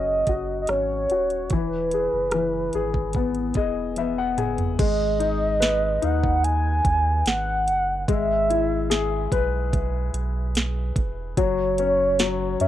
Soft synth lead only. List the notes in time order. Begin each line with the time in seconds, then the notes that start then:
Already playing: D#5
0.62 D#5
0.69 C#5
1.53 B4
4.80 D#5
6.03 F#5
6.44 G#5
7.27 F#5
8.11 E5
11.37 C#5
12.61 E5